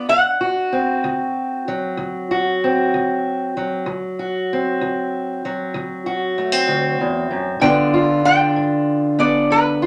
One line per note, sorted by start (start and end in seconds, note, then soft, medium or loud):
0.00 0.72 D4 soft
0.09 0.65 D2 medium
0.09 2.56 F#5 medium
0.41 2.29 F#4 medium
0.72 2.60 C4 soft
1.04 1.60 D2 medium
1.68 3.55 F#3 medium
1.97 2.54 D2 medium
2.31 3.83 F#4 medium
2.64 3.84 C4 soft
2.94 3.49 D2 medium
3.57 5.44 F#3 soft
3.86 4.42 D2 medium
4.19 6.05 F#4 medium
4.53 6.38 C4 medium
4.81 5.37 D2 medium
5.45 7.62 F#3 medium
5.74 6.31 D2 medium
6.06 7.59 F#4 medium
6.38 6.52 A3 soft
6.52 7.62 C4 soft
6.68 6.99 D2 medium
7.00 7.30 E2 medium
7.31 7.59 F#2 medium
7.60 8.18 G2 medium
7.60 9.86 D3 medium
7.60 9.18 B3 medium
7.60 8.25 D4 medium
7.60 7.93 F4 medium
7.60 8.21 G5 medium
7.94 9.81 F4 medium
8.25 9.86 D4 medium
8.25 9.19 G5 medium
8.56 9.13 G2 medium
9.19 9.86 B3 medium
9.19 9.52 D5 medium
9.50 9.86 G2 medium
9.50 9.86 B4 medium
9.82 9.86 F4 medium